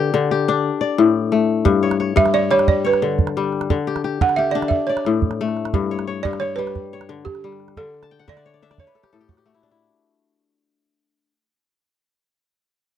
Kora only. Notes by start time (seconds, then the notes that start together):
Already playing: D3 G4
0.14 D3
0.31 G4
0.48 D4
0.81 D5
0.98 A2
1.32 A3
1.65 G2
1.83 C#5
2.00 C#5
2.16 G2
2.34 C#5
2.50 G3
2.84 C#5
3.02 D3
3.37 G3
3.70 D3
3.87 G4
4.04 G4
4.21 D3
4.38 G4
4.55 D4
4.89 D5
5.06 A2
5.41 A3
5.74 G2
5.91 C#5
6.07 C#5
6.25 G2
6.41 C#5
6.58 G3
6.93 C#5
7.09 D3
7.44 G3
7.77 D3
8.03 A5
8.11 G5
8.19 F#5
8.28 D3 E5
8.37 D5
8.46 C#5
8.54 D5
8.62 D4 E5
8.71 D5
8.79 C#5
8.87 B4
8.95 A4
9.03 G4
9.13 A2 A4
9.21 G4
9.29 F#4
9.38 G4
9.46 A3 F#4
9.54 E4
9.63 D4
9.71 E4